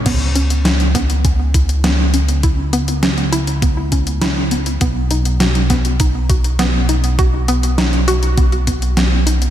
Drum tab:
CC |x---------------|----------------|----------------|----------------|
HH |x-xxxxxxx-xxx-xx|x-xxxxxxx-xxx-xx|x-xxxxxxx-xxx-xx|x-xxxxxxxxxxx-xx|
SD |----o-o-----o---|----o-------o---|----o-o-----o---|----o-------o---|
BD |o-----o-o-o-----|o-------o-o-----|o-----o-o-o-----|o-------o-o-----|